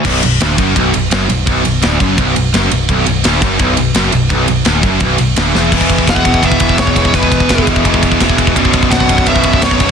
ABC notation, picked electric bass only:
X:1
M:4/4
L:1/8
Q:1/4=169
K:Bm
V:1 name="Picked electric bass" clef=bass
B,,,, B,,,, z F,,, B,,,, B,,,, F,,, B,,,, | B,,,, B,,,, D,,, F,,, B,,,, B,,,, F,,, B,,,, | B,,,, B,,,, D,,, F,,, B,,,, B,,,, F,,, B,,,, | B,,,, B,,,, D,,, F,,, B,,,, B,,,, D,,, E,,, |
E,,, E,,, E,,, E,,, E,,, E,,, E,,, E,,, | E,,, E,,, E,,, E,,, E,,, E,,, E,,, E,,, | B,,,, B,,,, B,,,, B,,,, B,,,, B,,,, B,,,, B,,,, |]